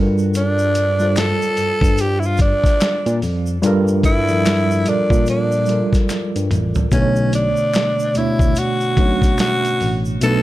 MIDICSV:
0, 0, Header, 1, 5, 480
1, 0, Start_track
1, 0, Key_signature, 2, "minor"
1, 0, Tempo, 821918
1, 201, Time_signature, 4, 2, 24, 8
1, 6087, End_track
2, 0, Start_track
2, 0, Title_t, "Tine electric piano"
2, 0, Program_c, 0, 4
2, 0, Note_on_c, 0, 55, 80
2, 0, Note_on_c, 0, 65, 66
2, 0, Note_on_c, 0, 69, 68
2, 0, Note_on_c, 0, 70, 78
2, 59, Control_c, 0, 64, 127
2, 439, Note_off_c, 0, 55, 0
2, 444, Note_off_c, 0, 65, 0
2, 448, Note_off_c, 0, 69, 0
2, 451, Note_off_c, 0, 70, 0
2, 582, Note_on_c, 0, 55, 66
2, 589, Note_on_c, 0, 65, 67
2, 600, Note_on_c, 0, 69, 63
2, 606, Note_on_c, 0, 72, 70
2, 1327, Note_off_c, 0, 55, 0
2, 1331, Note_off_c, 0, 65, 0
2, 1336, Note_off_c, 0, 69, 0
2, 1339, Note_off_c, 0, 72, 0
2, 2114, Note_on_c, 0, 55, 104
2, 2123, Note_on_c, 0, 65, 92
2, 2133, Note_on_c, 0, 69, 95
2, 2138, Note_on_c, 0, 70, 117
2, 2408, Note_off_c, 0, 55, 0
2, 2412, Note_off_c, 0, 65, 0
2, 2417, Note_off_c, 0, 69, 0
2, 2419, Note_off_c, 0, 70, 0
2, 2502, Note_on_c, 0, 55, 57
2, 2513, Note_on_c, 0, 53, 57
2, 2519, Note_on_c, 0, 69, 56
2, 2529, Note_on_c, 0, 70, 74
2, 2777, Note_off_c, 0, 55, 0
2, 2782, Note_off_c, 0, 53, 0
2, 2785, Note_off_c, 0, 69, 0
2, 2790, Note_off_c, 0, 70, 0
2, 2834, Note_on_c, 0, 55, 67
2, 2843, Note_on_c, 0, 65, 65
2, 2848, Note_on_c, 0, 69, 61
2, 2858, Note_on_c, 0, 70, 73
2, 3235, Note_off_c, 0, 55, 0
2, 3239, Note_off_c, 0, 65, 0
2, 3242, Note_off_c, 0, 69, 0
2, 3247, Note_off_c, 0, 70, 0
2, 3313, Note_on_c, 0, 55, 66
2, 3319, Note_on_c, 0, 65, 64
2, 3327, Note_on_c, 0, 69, 56
2, 3338, Note_on_c, 0, 70, 67
2, 3897, Note_off_c, 0, 55, 0
2, 3899, Note_off_c, 0, 65, 0
2, 3903, Note_off_c, 0, 69, 0
2, 3909, Note_off_c, 0, 70, 0
2, 4039, Note_on_c, 0, 47, 87
2, 4046, Note_on_c, 0, 57, 85
2, 4049, Control_c, 0, 64, 0
2, 4054, Note_on_c, 0, 50, 84
2, 4063, Note_on_c, 0, 71, 79
2, 4098, Note_off_c, 0, 71, 0
2, 4100, Note_on_c, 0, 73, 89
2, 4139, Control_c, 0, 64, 127
2, 4620, Note_off_c, 0, 47, 0
2, 4623, Note_off_c, 0, 57, 0
2, 4627, Note_off_c, 0, 50, 0
2, 4650, Note_off_c, 0, 73, 0
2, 4757, Note_on_c, 0, 47, 69
2, 4763, Note_on_c, 0, 57, 64
2, 4771, Note_on_c, 0, 62, 63
2, 4781, Note_on_c, 0, 73, 76
2, 5156, Note_off_c, 0, 47, 0
2, 5159, Note_off_c, 0, 57, 0
2, 5164, Note_off_c, 0, 62, 0
2, 5169, Note_off_c, 0, 73, 0
2, 5236, Note_on_c, 0, 47, 65
2, 5242, Note_on_c, 0, 57, 59
2, 5250, Note_on_c, 0, 61, 43
2, 5260, Note_on_c, 0, 73, 69
2, 5290, Note_on_c, 0, 62, 58
2, 5292, Note_off_c, 0, 61, 0
2, 5818, Note_off_c, 0, 47, 0
2, 5821, Note_off_c, 0, 57, 0
2, 5830, Note_off_c, 0, 73, 0
2, 5845, Note_off_c, 0, 62, 0
2, 5963, Note_on_c, 0, 47, 89
2, 5969, Note_on_c, 0, 57, 79
2, 5976, Note_on_c, 0, 62, 84
2, 5988, Note_on_c, 0, 71, 108
2, 6087, Note_off_c, 0, 47, 0
2, 6087, Note_off_c, 0, 57, 0
2, 6087, Note_off_c, 0, 62, 0
2, 6087, Note_off_c, 0, 71, 0
2, 6087, End_track
3, 0, Start_track
3, 0, Title_t, "Tenor saxophone"
3, 0, Program_c, 1, 66
3, 213, Note_on_c, 1, 62, 92
3, 690, Note_on_c, 1, 69, 103
3, 699, Note_off_c, 1, 62, 0
3, 1175, Note_on_c, 1, 67, 91
3, 1184, Note_off_c, 1, 69, 0
3, 1284, Note_on_c, 1, 64, 63
3, 1292, Note_off_c, 1, 67, 0
3, 1320, Note_on_c, 1, 65, 86
3, 1328, Note_off_c, 1, 64, 0
3, 1406, Note_off_c, 1, 65, 0
3, 1410, Note_on_c, 1, 62, 90
3, 1862, Note_off_c, 1, 62, 0
3, 2369, Note_on_c, 1, 64, 102
3, 2853, Note_on_c, 1, 62, 93
3, 2862, Note_off_c, 1, 64, 0
3, 3087, Note_off_c, 1, 62, 0
3, 3092, Note_on_c, 1, 62, 81
3, 3543, Note_off_c, 1, 62, 0
3, 4049, Note_on_c, 1, 61, 79
3, 4269, Note_off_c, 1, 61, 0
3, 4294, Note_on_c, 1, 62, 84
3, 4771, Note_on_c, 1, 64, 84
3, 4780, Note_off_c, 1, 62, 0
3, 5016, Note_on_c, 1, 66, 91
3, 5024, Note_off_c, 1, 64, 0
3, 5488, Note_off_c, 1, 66, 0
3, 5494, Note_on_c, 1, 66, 104
3, 5851, Note_off_c, 1, 66, 0
3, 5978, Note_on_c, 1, 69, 101
3, 6087, Note_off_c, 1, 69, 0
3, 6087, End_track
4, 0, Start_track
4, 0, Title_t, "Tine electric piano"
4, 0, Program_c, 2, 4
4, 0, Note_on_c, 2, 43, 82
4, 768, Note_off_c, 2, 43, 0
4, 923, Note_on_c, 2, 43, 46
4, 981, Note_off_c, 2, 43, 0
4, 1060, Note_on_c, 2, 43, 79
4, 1466, Note_off_c, 2, 43, 0
4, 1788, Note_on_c, 2, 46, 92
4, 1867, Note_off_c, 2, 46, 0
4, 1884, Note_on_c, 2, 41, 81
4, 2085, Note_off_c, 2, 41, 0
4, 2119, Note_on_c, 2, 43, 102
4, 2817, Note_off_c, 2, 43, 0
4, 2844, Note_on_c, 2, 46, 46
4, 2902, Note_off_c, 2, 46, 0
4, 2981, Note_on_c, 2, 46, 77
4, 3387, Note_off_c, 2, 46, 0
4, 3713, Note_on_c, 2, 43, 76
4, 3789, Note_off_c, 2, 43, 0
4, 3807, Note_on_c, 2, 33, 81
4, 4006, Note_off_c, 2, 33, 0
4, 4042, Note_on_c, 2, 35, 110
4, 4366, Note_off_c, 2, 35, 0
4, 4767, Note_on_c, 2, 38, 47
4, 4824, Note_off_c, 2, 38, 0
4, 4905, Note_on_c, 2, 38, 72
4, 4985, Note_off_c, 2, 38, 0
4, 5243, Note_on_c, 2, 35, 84
4, 5444, Note_off_c, 2, 35, 0
4, 5730, Note_on_c, 2, 33, 78
4, 5928, Note_off_c, 2, 33, 0
4, 5967, Note_on_c, 2, 35, 97
4, 6087, Note_off_c, 2, 35, 0
4, 6087, End_track
5, 0, Start_track
5, 0, Title_t, "Drums"
5, 105, Note_on_c, 9, 82, 39
5, 164, Note_off_c, 9, 82, 0
5, 200, Note_on_c, 9, 82, 68
5, 205, Note_on_c, 9, 42, 80
5, 258, Note_off_c, 9, 82, 0
5, 264, Note_off_c, 9, 42, 0
5, 342, Note_on_c, 9, 82, 50
5, 400, Note_off_c, 9, 82, 0
5, 437, Note_on_c, 9, 82, 46
5, 438, Note_on_c, 9, 42, 74
5, 495, Note_off_c, 9, 82, 0
5, 497, Note_off_c, 9, 42, 0
5, 580, Note_on_c, 9, 82, 39
5, 639, Note_off_c, 9, 82, 0
5, 677, Note_on_c, 9, 26, 61
5, 677, Note_on_c, 9, 82, 63
5, 685, Note_on_c, 9, 42, 73
5, 690, Note_on_c, 9, 38, 99
5, 735, Note_off_c, 9, 26, 0
5, 735, Note_off_c, 9, 82, 0
5, 743, Note_off_c, 9, 42, 0
5, 748, Note_off_c, 9, 38, 0
5, 829, Note_on_c, 9, 82, 50
5, 887, Note_off_c, 9, 82, 0
5, 917, Note_on_c, 9, 42, 58
5, 917, Note_on_c, 9, 82, 43
5, 975, Note_off_c, 9, 42, 0
5, 976, Note_off_c, 9, 82, 0
5, 1059, Note_on_c, 9, 36, 97
5, 1073, Note_on_c, 9, 82, 55
5, 1117, Note_off_c, 9, 36, 0
5, 1132, Note_off_c, 9, 82, 0
5, 1153, Note_on_c, 9, 82, 58
5, 1159, Note_on_c, 9, 42, 77
5, 1211, Note_off_c, 9, 82, 0
5, 1217, Note_off_c, 9, 42, 0
5, 1300, Note_on_c, 9, 82, 44
5, 1359, Note_off_c, 9, 82, 0
5, 1386, Note_on_c, 9, 82, 41
5, 1395, Note_on_c, 9, 36, 86
5, 1399, Note_on_c, 9, 42, 51
5, 1444, Note_off_c, 9, 82, 0
5, 1454, Note_off_c, 9, 36, 0
5, 1457, Note_off_c, 9, 42, 0
5, 1540, Note_on_c, 9, 36, 81
5, 1551, Note_on_c, 9, 82, 45
5, 1554, Note_on_c, 9, 38, 33
5, 1555, Note_on_c, 9, 42, 39
5, 1598, Note_off_c, 9, 36, 0
5, 1609, Note_off_c, 9, 82, 0
5, 1613, Note_off_c, 9, 38, 0
5, 1613, Note_off_c, 9, 42, 0
5, 1638, Note_on_c, 9, 26, 64
5, 1638, Note_on_c, 9, 82, 62
5, 1641, Note_on_c, 9, 42, 67
5, 1646, Note_on_c, 9, 38, 107
5, 1697, Note_off_c, 9, 26, 0
5, 1697, Note_off_c, 9, 82, 0
5, 1700, Note_off_c, 9, 42, 0
5, 1704, Note_off_c, 9, 38, 0
5, 1789, Note_on_c, 9, 42, 50
5, 1793, Note_on_c, 9, 82, 44
5, 1847, Note_off_c, 9, 42, 0
5, 1852, Note_off_c, 9, 82, 0
5, 1882, Note_on_c, 9, 46, 38
5, 1884, Note_on_c, 9, 82, 38
5, 1941, Note_off_c, 9, 46, 0
5, 1942, Note_off_c, 9, 82, 0
5, 2023, Note_on_c, 9, 82, 45
5, 2081, Note_off_c, 9, 82, 0
5, 2121, Note_on_c, 9, 82, 64
5, 2122, Note_on_c, 9, 42, 84
5, 2179, Note_off_c, 9, 82, 0
5, 2180, Note_off_c, 9, 42, 0
5, 2264, Note_on_c, 9, 82, 50
5, 2322, Note_off_c, 9, 82, 0
5, 2356, Note_on_c, 9, 36, 86
5, 2359, Note_on_c, 9, 42, 68
5, 2360, Note_on_c, 9, 82, 45
5, 2415, Note_off_c, 9, 36, 0
5, 2417, Note_off_c, 9, 42, 0
5, 2418, Note_off_c, 9, 82, 0
5, 2501, Note_on_c, 9, 82, 41
5, 2559, Note_off_c, 9, 82, 0
5, 2602, Note_on_c, 9, 26, 61
5, 2602, Note_on_c, 9, 82, 64
5, 2605, Note_on_c, 9, 42, 79
5, 2610, Note_on_c, 9, 38, 97
5, 2660, Note_off_c, 9, 26, 0
5, 2660, Note_off_c, 9, 82, 0
5, 2663, Note_off_c, 9, 42, 0
5, 2668, Note_off_c, 9, 38, 0
5, 2750, Note_on_c, 9, 82, 47
5, 2808, Note_off_c, 9, 82, 0
5, 2837, Note_on_c, 9, 42, 60
5, 2837, Note_on_c, 9, 82, 39
5, 2895, Note_off_c, 9, 42, 0
5, 2896, Note_off_c, 9, 82, 0
5, 2980, Note_on_c, 9, 36, 98
5, 2994, Note_on_c, 9, 82, 53
5, 3038, Note_off_c, 9, 36, 0
5, 3052, Note_off_c, 9, 82, 0
5, 3073, Note_on_c, 9, 82, 56
5, 3083, Note_on_c, 9, 42, 72
5, 3131, Note_off_c, 9, 82, 0
5, 3141, Note_off_c, 9, 42, 0
5, 3221, Note_on_c, 9, 82, 45
5, 3280, Note_off_c, 9, 82, 0
5, 3304, Note_on_c, 9, 82, 43
5, 3323, Note_on_c, 9, 42, 53
5, 3363, Note_off_c, 9, 82, 0
5, 3381, Note_off_c, 9, 42, 0
5, 3461, Note_on_c, 9, 36, 83
5, 3467, Note_on_c, 9, 82, 41
5, 3474, Note_on_c, 9, 38, 35
5, 3474, Note_on_c, 9, 42, 44
5, 3519, Note_off_c, 9, 36, 0
5, 3525, Note_off_c, 9, 82, 0
5, 3532, Note_off_c, 9, 38, 0
5, 3532, Note_off_c, 9, 42, 0
5, 3557, Note_on_c, 9, 26, 59
5, 3557, Note_on_c, 9, 82, 62
5, 3564, Note_on_c, 9, 42, 77
5, 3568, Note_on_c, 9, 38, 50
5, 3616, Note_off_c, 9, 26, 0
5, 3616, Note_off_c, 9, 82, 0
5, 3623, Note_off_c, 9, 42, 0
5, 3627, Note_off_c, 9, 38, 0
5, 3713, Note_on_c, 9, 42, 51
5, 3715, Note_on_c, 9, 82, 42
5, 3771, Note_off_c, 9, 42, 0
5, 3774, Note_off_c, 9, 82, 0
5, 3800, Note_on_c, 9, 45, 75
5, 3803, Note_on_c, 9, 42, 56
5, 3811, Note_on_c, 9, 82, 35
5, 3859, Note_off_c, 9, 45, 0
5, 3862, Note_off_c, 9, 42, 0
5, 3869, Note_off_c, 9, 82, 0
5, 3941, Note_on_c, 9, 82, 43
5, 3946, Note_on_c, 9, 43, 84
5, 3999, Note_off_c, 9, 82, 0
5, 4005, Note_off_c, 9, 43, 0
5, 4039, Note_on_c, 9, 36, 91
5, 4039, Note_on_c, 9, 82, 68
5, 4046, Note_on_c, 9, 42, 89
5, 4098, Note_off_c, 9, 36, 0
5, 4098, Note_off_c, 9, 82, 0
5, 4104, Note_off_c, 9, 42, 0
5, 4179, Note_on_c, 9, 82, 47
5, 4238, Note_off_c, 9, 82, 0
5, 4278, Note_on_c, 9, 82, 45
5, 4280, Note_on_c, 9, 42, 74
5, 4337, Note_off_c, 9, 82, 0
5, 4339, Note_off_c, 9, 42, 0
5, 4418, Note_on_c, 9, 82, 43
5, 4476, Note_off_c, 9, 82, 0
5, 4518, Note_on_c, 9, 26, 61
5, 4518, Note_on_c, 9, 82, 64
5, 4527, Note_on_c, 9, 42, 81
5, 4532, Note_on_c, 9, 38, 107
5, 4576, Note_off_c, 9, 26, 0
5, 4576, Note_off_c, 9, 82, 0
5, 4585, Note_off_c, 9, 42, 0
5, 4590, Note_off_c, 9, 38, 0
5, 4668, Note_on_c, 9, 82, 52
5, 4727, Note_off_c, 9, 82, 0
5, 4756, Note_on_c, 9, 82, 40
5, 4760, Note_on_c, 9, 42, 63
5, 4815, Note_off_c, 9, 82, 0
5, 4818, Note_off_c, 9, 42, 0
5, 4902, Note_on_c, 9, 36, 98
5, 4911, Note_on_c, 9, 82, 50
5, 4960, Note_off_c, 9, 36, 0
5, 4969, Note_off_c, 9, 82, 0
5, 4996, Note_on_c, 9, 82, 64
5, 5003, Note_on_c, 9, 42, 77
5, 5055, Note_off_c, 9, 82, 0
5, 5061, Note_off_c, 9, 42, 0
5, 5143, Note_on_c, 9, 82, 43
5, 5201, Note_off_c, 9, 82, 0
5, 5238, Note_on_c, 9, 36, 94
5, 5241, Note_on_c, 9, 42, 54
5, 5297, Note_off_c, 9, 36, 0
5, 5300, Note_off_c, 9, 42, 0
5, 5383, Note_on_c, 9, 36, 81
5, 5389, Note_on_c, 9, 82, 46
5, 5396, Note_on_c, 9, 38, 33
5, 5396, Note_on_c, 9, 42, 39
5, 5441, Note_off_c, 9, 36, 0
5, 5447, Note_off_c, 9, 82, 0
5, 5454, Note_off_c, 9, 38, 0
5, 5454, Note_off_c, 9, 42, 0
5, 5477, Note_on_c, 9, 26, 58
5, 5477, Note_on_c, 9, 82, 59
5, 5486, Note_on_c, 9, 42, 68
5, 5490, Note_on_c, 9, 38, 99
5, 5536, Note_off_c, 9, 26, 0
5, 5536, Note_off_c, 9, 82, 0
5, 5544, Note_off_c, 9, 42, 0
5, 5549, Note_off_c, 9, 38, 0
5, 5634, Note_on_c, 9, 42, 49
5, 5638, Note_on_c, 9, 82, 43
5, 5692, Note_off_c, 9, 42, 0
5, 5696, Note_off_c, 9, 82, 0
5, 5725, Note_on_c, 9, 46, 40
5, 5731, Note_on_c, 9, 82, 38
5, 5783, Note_off_c, 9, 46, 0
5, 5789, Note_off_c, 9, 82, 0
5, 5869, Note_on_c, 9, 82, 39
5, 5928, Note_off_c, 9, 82, 0
5, 5965, Note_on_c, 9, 42, 83
5, 5966, Note_on_c, 9, 82, 65
5, 6023, Note_off_c, 9, 42, 0
5, 6025, Note_off_c, 9, 82, 0
5, 6087, End_track
0, 0, End_of_file